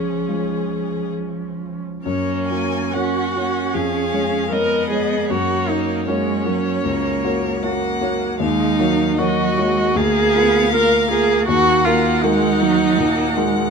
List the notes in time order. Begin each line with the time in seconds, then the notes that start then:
Already playing: C#2 F3 C#4 G#4
0.29 G#3 F4 C#5
2.04 F#2 A#3 C#4 C#5
2.48 A#3 F#4 C#5 G#5
2.92 A#3 C#4 F#4 C#5 F#5
3.35 A#3 C#4 F#4 C#5
3.74 F2 G#4 F5
4.13 G#3 G#4 C#5
4.50 G#3 B3 G#4 A#4 C#5 D#5
4.90 G#3 G#4 C#5
5.30 F#2 A#3 F#4 C#5
5.68 A#3 D#4 F#4 C#5
6.08 G#3 A#3 C#4 F#4 C#5
6.45 F#3 A#3 F#4 C#5
6.85 C#2 A#3
7.24 A#3 F#4 C#5
7.63 A#3 F#4 C#5 F#5
8.01 A#3 F#4 C#5
8.40 D#2 G#3 D#4 F5
8.79 F#3 A#3 F#4 C#5
9.18 F#3 A#3 F#4 C#5 D#5
9.58 G#3 A#3 F#4 C#5
9.95 D2 A#3 G#4 F5
10.35 A#3 B3 F4 A#4
10.73 A#3 F4 A#4
11.11 A#3 F4 G#4 A#4
11.48 D#2 A#3 F#4 F#5
11.85 A#3 F4 F#4 A#4
12.22 G#3 A#3 D#4 F#4 A#4
12.61 F#3 A#3 F#4 A#4
12.99 A#2 A#3
13.37 G#3 A#3 F#4 A#4